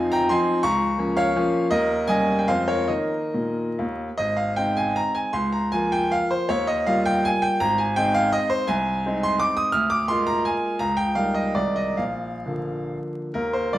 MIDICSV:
0, 0, Header, 1, 2, 480
1, 0, Start_track
1, 0, Tempo, 344234
1, 887, Time_signature, 3, 2, 24, 8
1, 1374, Tempo, 363636
1, 2814, Tempo, 407886
1, 3774, Tempo, 446429
1, 4734, Tempo, 401070
1, 5214, Tempo, 384615
1, 9054, Tempo, 354820
1, 14334, Tempo, 412371
1, 15294, Tempo, 471328
1, 16254, Tempo, 401606
1, 17267, End_track
2, 0, Start_track
2, 0, Title_t, "Grand piano"
2, 0, Program_c, 0, 0
2, 0, Control_c, 0, 64, 127
2, 0, Note_on_c, 0, 41, 75
2, 0, Note_on_c, 0, 53, 59
2, 0, Note_on_c, 0, 60, 59
2, 0, Note_on_c, 0, 63, 66
2, 0, Note_on_c, 0, 77, 91
2, 0, Note_on_c, 0, 80, 115
2, 161, Note_on_c, 0, 82, 116
2, 173, Note_off_c, 0, 80, 0
2, 179, Note_on_c, 0, 79, 92
2, 373, Note_off_c, 0, 53, 0
2, 376, Note_off_c, 0, 60, 0
2, 379, Note_off_c, 0, 63, 0
2, 399, Note_off_c, 0, 79, 0
2, 407, Note_off_c, 0, 82, 0
2, 407, Note_on_c, 0, 84, 120
2, 420, Note_on_c, 0, 53, 72
2, 425, Note_on_c, 0, 80, 94
2, 428, Control_c, 0, 64, 0
2, 431, Note_on_c, 0, 60, 73
2, 435, Note_on_c, 0, 63, 75
2, 438, Note_off_c, 0, 41, 0
2, 439, Note_off_c, 0, 77, 0
2, 842, Note_off_c, 0, 53, 0
2, 848, Note_off_c, 0, 60, 0
2, 850, Note_off_c, 0, 63, 0
2, 859, Note_off_c, 0, 80, 0
2, 879, Note_on_c, 0, 85, 126
2, 883, Note_off_c, 0, 84, 0
2, 891, Note_on_c, 0, 37, 79
2, 897, Note_on_c, 0, 82, 96
2, 1139, Control_c, 0, 64, 127
2, 1361, Note_off_c, 0, 37, 0
2, 1371, Note_on_c, 0, 53, 64
2, 1372, Note_on_c, 0, 58, 61
2, 1381, Note_on_c, 0, 61, 66
2, 1573, Note_off_c, 0, 82, 0
2, 1612, Note_on_c, 0, 77, 124
2, 1613, Note_off_c, 0, 85, 0
2, 1621, Note_on_c, 0, 73, 89
2, 1803, Note_off_c, 0, 53, 0
2, 1803, Note_off_c, 0, 58, 0
2, 1808, Note_off_c, 0, 61, 0
2, 1863, Note_on_c, 0, 53, 75
2, 1865, Note_on_c, 0, 58, 72
2, 1872, Control_c, 0, 64, 0
2, 1876, Note_on_c, 0, 61, 76
2, 2275, Note_off_c, 0, 73, 0
2, 2281, Note_off_c, 0, 53, 0
2, 2282, Note_off_c, 0, 58, 0
2, 2288, Note_off_c, 0, 61, 0
2, 2319, Note_off_c, 0, 77, 0
2, 2324, Note_on_c, 0, 75, 112
2, 2334, Note_on_c, 0, 39, 80
2, 2335, Note_on_c, 0, 70, 88
2, 2575, Control_c, 0, 64, 127
2, 2786, Note_off_c, 0, 70, 0
2, 2805, Note_off_c, 0, 39, 0
2, 2812, Note_off_c, 0, 75, 0
2, 2812, Note_on_c, 0, 80, 125
2, 2822, Note_on_c, 0, 55, 58
2, 2830, Note_on_c, 0, 58, 59
2, 2830, Note_on_c, 0, 75, 93
2, 2831, Note_on_c, 0, 61, 65
2, 3149, Note_off_c, 0, 75, 0
2, 3165, Note_off_c, 0, 80, 0
2, 3179, Note_on_c, 0, 79, 88
2, 3240, Note_off_c, 0, 55, 0
2, 3244, Note_off_c, 0, 58, 0
2, 3245, Note_off_c, 0, 61, 0
2, 3287, Note_on_c, 0, 77, 115
2, 3289, Note_off_c, 0, 79, 0
2, 3293, Note_on_c, 0, 41, 74
2, 3294, Note_on_c, 0, 53, 54
2, 3296, Control_c, 0, 64, 0
2, 3302, Note_on_c, 0, 56, 52
2, 3302, Note_on_c, 0, 72, 81
2, 3308, Note_on_c, 0, 60, 52
2, 3515, Note_off_c, 0, 72, 0
2, 3519, Control_c, 0, 64, 127
2, 3521, Note_on_c, 0, 73, 100
2, 3524, Note_off_c, 0, 77, 0
2, 3539, Note_on_c, 0, 70, 74
2, 3732, Note_off_c, 0, 53, 0
2, 3737, Note_off_c, 0, 56, 0
2, 3740, Note_off_c, 0, 60, 0
2, 3753, Note_off_c, 0, 70, 0
2, 3756, Note_on_c, 0, 75, 83
2, 3764, Note_on_c, 0, 63, 49
2, 3765, Note_off_c, 0, 41, 0
2, 3767, Note_on_c, 0, 51, 58
2, 3769, Note_on_c, 0, 58, 47
2, 3771, Note_on_c, 0, 70, 62
2, 3773, Note_off_c, 0, 73, 0
2, 3788, Control_c, 0, 64, 0
2, 4082, Control_c, 0, 64, 127
2, 4110, Note_off_c, 0, 51, 0
2, 4157, Note_off_c, 0, 63, 0
2, 4160, Note_off_c, 0, 58, 0
2, 4258, Note_on_c, 0, 46, 60
2, 4590, Note_off_c, 0, 46, 0
2, 4738, Note_on_c, 0, 39, 65
2, 4745, Control_c, 0, 64, 0
2, 4932, Note_off_c, 0, 70, 0
2, 4973, Note_off_c, 0, 75, 0
2, 5073, Note_off_c, 0, 39, 0
2, 5201, Note_on_c, 0, 75, 106
2, 5216, Note_on_c, 0, 32, 72
2, 5438, Note_on_c, 0, 77, 96
2, 5440, Note_off_c, 0, 75, 0
2, 5483, Control_c, 0, 64, 127
2, 5681, Note_off_c, 0, 32, 0
2, 5686, Note_on_c, 0, 79, 104
2, 5690, Note_off_c, 0, 77, 0
2, 5695, Note_on_c, 0, 56, 54
2, 5705, Note_on_c, 0, 60, 52
2, 5705, Note_on_c, 0, 63, 58
2, 5939, Note_on_c, 0, 80, 103
2, 5942, Note_off_c, 0, 79, 0
2, 6180, Note_on_c, 0, 82, 106
2, 6183, Note_off_c, 0, 80, 0
2, 6204, Control_c, 0, 64, 0
2, 6413, Note_on_c, 0, 80, 102
2, 6416, Note_off_c, 0, 82, 0
2, 6604, Note_off_c, 0, 56, 0
2, 6609, Note_off_c, 0, 60, 0
2, 6609, Note_off_c, 0, 63, 0
2, 6641, Note_on_c, 0, 84, 106
2, 6650, Note_off_c, 0, 80, 0
2, 6650, Note_on_c, 0, 37, 73
2, 6874, Control_c, 0, 64, 127
2, 6884, Note_on_c, 0, 82, 88
2, 6889, Note_off_c, 0, 84, 0
2, 7126, Note_on_c, 0, 80, 112
2, 7130, Note_off_c, 0, 37, 0
2, 7139, Note_on_c, 0, 53, 59
2, 7141, Note_off_c, 0, 82, 0
2, 7146, Note_on_c, 0, 58, 53
2, 7151, Note_on_c, 0, 65, 61
2, 7378, Note_on_c, 0, 79, 111
2, 7387, Note_off_c, 0, 80, 0
2, 7621, Note_on_c, 0, 77, 110
2, 7632, Note_off_c, 0, 79, 0
2, 7661, Control_c, 0, 64, 0
2, 7860, Note_on_c, 0, 72, 104
2, 7871, Note_off_c, 0, 77, 0
2, 8055, Note_off_c, 0, 53, 0
2, 8059, Note_off_c, 0, 58, 0
2, 8061, Note_off_c, 0, 65, 0
2, 8087, Note_on_c, 0, 73, 107
2, 8099, Note_off_c, 0, 72, 0
2, 8099, Note_on_c, 0, 39, 71
2, 8318, Note_on_c, 0, 75, 104
2, 8326, Note_off_c, 0, 73, 0
2, 8379, Control_c, 0, 64, 127
2, 8557, Note_on_c, 0, 77, 116
2, 8559, Note_off_c, 0, 39, 0
2, 8565, Note_on_c, 0, 55, 58
2, 8569, Note_off_c, 0, 75, 0
2, 8569, Note_on_c, 0, 58, 61
2, 8575, Note_on_c, 0, 65, 66
2, 8794, Note_on_c, 0, 79, 116
2, 8812, Note_off_c, 0, 77, 0
2, 9037, Note_on_c, 0, 80, 119
2, 9039, Note_off_c, 0, 79, 0
2, 9074, Control_c, 0, 64, 0
2, 9266, Note_on_c, 0, 79, 113
2, 9285, Note_off_c, 0, 80, 0
2, 9467, Note_off_c, 0, 55, 0
2, 9469, Note_off_c, 0, 58, 0
2, 9472, Note_off_c, 0, 65, 0
2, 9514, Note_on_c, 0, 82, 126
2, 9515, Note_off_c, 0, 79, 0
2, 9522, Note_on_c, 0, 32, 85
2, 9755, Note_on_c, 0, 80, 105
2, 9756, Note_off_c, 0, 82, 0
2, 9829, Control_c, 0, 64, 127
2, 9992, Note_off_c, 0, 32, 0
2, 10001, Note_on_c, 0, 79, 124
2, 10005, Note_off_c, 0, 80, 0
2, 10010, Note_on_c, 0, 56, 68
2, 10012, Note_on_c, 0, 60, 65
2, 10022, Note_on_c, 0, 63, 67
2, 10247, Note_on_c, 0, 77, 124
2, 10253, Note_off_c, 0, 79, 0
2, 10490, Note_off_c, 0, 77, 0
2, 10491, Note_on_c, 0, 75, 119
2, 10507, Control_c, 0, 64, 0
2, 10723, Note_on_c, 0, 72, 120
2, 10733, Note_off_c, 0, 75, 0
2, 10927, Note_off_c, 0, 56, 0
2, 10927, Note_off_c, 0, 60, 0
2, 10932, Note_off_c, 0, 63, 0
2, 10964, Note_on_c, 0, 80, 120
2, 10974, Note_off_c, 0, 72, 0
2, 10977, Note_on_c, 0, 36, 82
2, 11208, Control_c, 0, 64, 127
2, 11455, Note_off_c, 0, 36, 0
2, 11481, Note_on_c, 0, 56, 65
2, 11491, Note_on_c, 0, 60, 65
2, 11495, Note_on_c, 0, 63, 66
2, 11704, Note_off_c, 0, 80, 0
2, 11719, Note_on_c, 0, 84, 127
2, 11938, Note_on_c, 0, 86, 127
2, 11945, Note_off_c, 0, 84, 0
2, 11961, Control_c, 0, 64, 0
2, 12165, Note_off_c, 0, 86, 0
2, 12170, Note_on_c, 0, 87, 126
2, 12342, Note_off_c, 0, 56, 0
2, 12347, Note_off_c, 0, 60, 0
2, 12349, Note_off_c, 0, 63, 0
2, 12382, Note_on_c, 0, 89, 119
2, 12393, Note_off_c, 0, 87, 0
2, 12404, Note_on_c, 0, 38, 79
2, 12618, Note_off_c, 0, 89, 0
2, 12620, Note_on_c, 0, 86, 121
2, 12681, Control_c, 0, 64, 127
2, 12865, Note_off_c, 0, 38, 0
2, 12868, Note_on_c, 0, 84, 121
2, 12872, Note_off_c, 0, 86, 0
2, 12881, Note_on_c, 0, 56, 62
2, 12887, Note_on_c, 0, 58, 63
2, 12893, Note_on_c, 0, 65, 67
2, 13117, Note_on_c, 0, 82, 111
2, 13127, Note_off_c, 0, 84, 0
2, 13367, Note_on_c, 0, 80, 108
2, 13370, Note_off_c, 0, 82, 0
2, 13393, Control_c, 0, 64, 0
2, 13799, Note_off_c, 0, 56, 0
2, 13802, Note_off_c, 0, 58, 0
2, 13805, Note_off_c, 0, 65, 0
2, 13830, Note_on_c, 0, 82, 110
2, 13844, Note_off_c, 0, 80, 0
2, 13845, Note_on_c, 0, 37, 71
2, 14065, Note_on_c, 0, 79, 108
2, 14073, Note_off_c, 0, 82, 0
2, 14114, Control_c, 0, 64, 127
2, 14314, Note_off_c, 0, 37, 0
2, 14316, Note_on_c, 0, 77, 102
2, 14322, Note_off_c, 0, 79, 0
2, 14323, Note_on_c, 0, 55, 53
2, 14328, Note_on_c, 0, 58, 54
2, 14333, Note_on_c, 0, 63, 55
2, 14542, Note_on_c, 0, 75, 92
2, 14550, Note_off_c, 0, 77, 0
2, 14741, Note_off_c, 0, 55, 0
2, 14743, Note_off_c, 0, 58, 0
2, 14746, Note_off_c, 0, 63, 0
2, 14779, Note_on_c, 0, 74, 90
2, 14784, Note_off_c, 0, 75, 0
2, 14787, Note_on_c, 0, 36, 64
2, 14793, Note_on_c, 0, 51, 49
2, 14793, Note_on_c, 0, 56, 45
2, 14800, Note_on_c, 0, 63, 49
2, 14803, Control_c, 0, 64, 0
2, 15024, Note_on_c, 0, 75, 89
2, 15031, Note_off_c, 0, 74, 0
2, 15036, Control_c, 0, 64, 127
2, 15247, Note_off_c, 0, 51, 0
2, 15247, Note_off_c, 0, 56, 0
2, 15250, Note_off_c, 0, 63, 0
2, 15271, Note_on_c, 0, 77, 82
2, 15276, Note_off_c, 0, 36, 0
2, 15286, Note_off_c, 0, 75, 0
2, 15286, Note_on_c, 0, 34, 60
2, 15310, Control_c, 0, 64, 0
2, 15542, Control_c, 0, 64, 127
2, 15755, Note_off_c, 0, 34, 0
2, 15769, Note_on_c, 0, 50, 44
2, 15770, Note_on_c, 0, 53, 45
2, 15777, Note_on_c, 0, 58, 46
2, 16243, Note_off_c, 0, 77, 0
2, 16271, Control_c, 0, 64, 0
2, 16704, Note_off_c, 0, 50, 0
2, 16705, Note_off_c, 0, 53, 0
2, 16709, Note_off_c, 0, 58, 0
2, 16740, Note_on_c, 0, 70, 94
2, 16753, Note_on_c, 0, 39, 65
2, 16969, Note_off_c, 0, 70, 0
2, 16972, Note_on_c, 0, 72, 88
2, 16976, Control_c, 0, 64, 127
2, 17198, Note_off_c, 0, 39, 0
2, 17207, Note_on_c, 0, 74, 94
2, 17210, Note_off_c, 0, 72, 0
2, 17219, Note_on_c, 0, 51, 48
2, 17222, Note_on_c, 0, 55, 47
2, 17226, Note_on_c, 0, 58, 53
2, 17230, Control_c, 0, 64, 0
2, 17267, Note_off_c, 0, 51, 0
2, 17267, Note_off_c, 0, 55, 0
2, 17267, Note_off_c, 0, 58, 0
2, 17267, Note_off_c, 0, 74, 0
2, 17267, End_track
0, 0, End_of_file